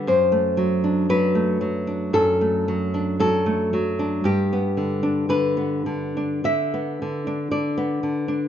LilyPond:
\new Staff \with { instrumentName = "Nylon-string guitar" } { \time 4/4 \key g \major \tempo 4 = 57 << { c''4 b'4 a'4 a'4 | g'4 b'4 e''4 d''4 | } \\ { fis,16 a16 fis16 d'16 fis16 a16 fis16 d'16 fis,16 a16 fis16 d'16 fis16 a16 fis16 d'16 | g,16 b16 d16 d'16 d16 b16 d16 d'16 d16 b16 d16 d'16 d16 b16 d16 d'16 | } >> }